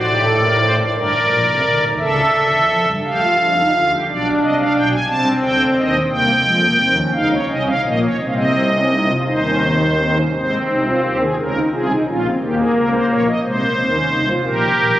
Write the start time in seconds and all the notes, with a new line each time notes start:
Already playing: A1 A2 D5
0.06 G4
0.24 A4
0.41 A#4
0.60 C5
0.77 D5
0.94 G1 G2 A#4 D5
1.12 A1 A2
1.29 A#1 A#2
1.46 C2 C3
1.64 D2 D3
1.81 D#2 D#3
1.98 C#2 C#3 A4 E5
2.34 D2 D3
2.50 E2 E3
2.70 F2 F3
2.86 G2 G3
3.04 A3 G4 F5
3.21 F4
3.39 F2 F3 D4
3.57 D#4
3.74 D2 D3 F4
3.91 G4
4.07 B1 B2 D4 D5
4.41 C2 C3 D#5
4.58 F5
4.74 B1 B2 G5
4.91 G#5
5.07 C2 C3 C4 A5
5.41 D2 D3 G5
5.76 D#2 D#3 D#5
6.09 C2 C3 A#3 G5
6.43 F2 F3 G#3
6.61 A#3
6.77 D#2 D#3 C4
6.95 C#4
7.12 C#2 C#3 D#4 F5
7.30 C#5
7.47 C2 C3 C#4 D#5
7.65 F5
7.83 A#1 A#2 A#3 D#5
8.01 C#5
8.19 C2 C3 C4 D#5
8.27 F5
8.33 D#5
8.72 C#4
8.90 D#4
9.08 F4
9.25 D#2 D#3 D#4 C5
9.43 C#4
9.62 C4
9.80 A#3
9.98 C4
10.15 C#4
10.33 G#1 G#2 C4 C5
10.69 C2 C3 D#4
10.85 F4
11.02 D#2 D#3 G4
11.20 G#4
11.37 C#2 C#3 C#4 A#4
11.54 D#4
11.70 C2 C3 F4 G#4
11.88 D#4
12.05 A#1 A#2 C#4 F4
12.23 C4
12.40 D#2 D#3 A#3 G4
12.58 G#4
12.75 C#2 C#3 A#4
12.92 C5
13.09 A#1 A#2 C#5
13.26 D#5
13.42 C2 C3 G#3 C5
13.59 A#3
13.76 D#2 D#3 C4
13.93 C#4
14.10 C2 C3 D#4
14.27 F4
14.43 A#1 A#2 G4 A#4
14.77 A#1 A#2
14.94 C2 C3